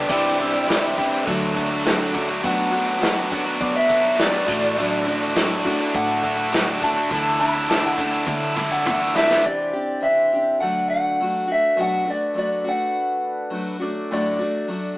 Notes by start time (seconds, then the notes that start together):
0.08 C2 C3 E3 G3 C4 D4 E4 G4 C5 D5, kick, tambourine, crash
0.38 E3 G3 C4 D4 E4 G4, open hi-hat
0.54 G3 E4 G4
0.67 C3 E3 G3 C4 D4 E4 G4, snare, open hi-hat, tambourine
0.96 E3 G3 C4 D4 E4 G4, kick, open hi-hat, tambourine
1.12 G3 E4 G4
1.25 D2 D3 F#3 A3 D4 F#4 A4, kick, open hi-hat
1.29 D4 F#4
1.54 F#3 A3 D4 F#4, kick, open hi-hat, tambourine
1.70 A3 D4 F#4
1.85 D3 F#3 A3 D4 F#4, snare, open hi-hat, tambourine
1.98 A3 D4 F#4
2.12 F#3 A3 D4 F#4, kick, open hi-hat
2.17 A3 D4
2.28 A3 D4 F#4
2.42 B1 B2 F#3 A3 B3 D4 F#4 A4 B4 F#5, kick, open hi-hat, tambourine
2.46 F#4
2.71 F#3 A3 B3 D4 F#4, open hi-hat
2.86 B3 D4 F#4
3.00 B2 F#3 A3 B3 D4 F#4, snare, open hi-hat, tambourine
3.31 F#3 A3 B3 D4 F#4, kick, open hi-hat, tambourine
3.45 B3 D4 F#4
3.60 B2 D5, kick, open hi-hat
3.76 E5
3.88 F#3 B3 D4 F#4, kick, open hi-hat, tambourine
4.02 B3 D4 F#4
4.16 B2 F#3 A3 B3 D4 F#4, snare, open hi-hat, tambourine
4.20 D4 F#4 D5
4.32 B3 D4 F#4
4.46 A1 A2 D3 F#3 A3 D4 F#4, kick, tambourine, crash
4.50 D4 F#4 A4
4.60 A3 D4 F#4
4.77 A2 D3 F#3 A3 D4 F#4, tambourine
5.06 D3 F#3 A3 D4 F#4, open hi-hat
5.21 A3 D4 F#4
5.35 A2 D3 F#3 A3 D4 F#4, snare, open hi-hat, tambourine
5.64 D3 F#3 A3 D4 F#4, kick, open hi-hat, tambourine
5.80 A3 D4 F#4
5.94 A2 F#5, kick, open hi-hat
6.22 D3 A3 D4 F#4, kick, open hi-hat
6.37 A3 D4 F#4
6.51 A2 D3 F#3 A3 D4 F#4, snare, open hi-hat, tambourine
6.67 A3 D4 F#4
6.80 D3 A3 D4 F#4 A5, kick, open hi-hat, tambourine
6.85 F#3
6.96 A3 D4 F#4
7.09 D2 D3 E3 A3 D4 E4 A4, kick, open hi-hat, tambourine
7.39 D3 A3 D4 E4 A4 B5, open hi-hat, tambourine
7.54 A3 D4 E4
7.68 D3 E3 A3 D4 E4 A4 A5, snare, open hi-hat, tambourine
7.85 F#5
7.97 D3 A3 D4 E4 A4, kick, open hi-hat, tambourine
8.11 A3 D4 E4
8.27 D3, kick, high tom, tambourine
8.55 D3 A3 D4 E4, mid tom, tambourine
8.71 A3 D4 E4 F#5, kick
8.85 D3 E3 A3 D4 E4 A4, mid tom, tambourine
9.00 A3 D4 E4
9.14 D3 A3 D4 E4 A4 E5, snare, tambourine
9.18 B3 C4
9.24 D4 E4
9.28 D4 E4 F4, snare
9.32 A3 G4 A4
9.37 B4 C5
9.43 C3 E3 C4 D4 E4 G4 D5
9.47 C5
9.73 C4 D4 G4
10.01 E3 C4 D4 G4 E5
10.32 C4 D4 G4
10.59 D3 F#3 A3 D4 F#4 A4 F#5
10.63 F#4
10.90 F#5
11.20 F#3 A3 D4 F#4
11.48 A3 D4 F#4
11.52 E5
11.75 B2 F#3 A3 D4 F#4 A4 B4
11.81 F#5
12.05 A3 D4 F#4
12.10 D5
12.33 F#3 A3 D4 F#4
12.39 D5
12.64 A3 D4 F#4
12.69 F#5
13.50 F#3 A3 D4 F#4
13.80 F#3 A3 D4 F#4 A4 D5
14.11 A2 D3 F#3 A3 D4 F#4 D5
14.39 F#3 A3 D4 F#4
14.68 F#3 A3 D4 F#4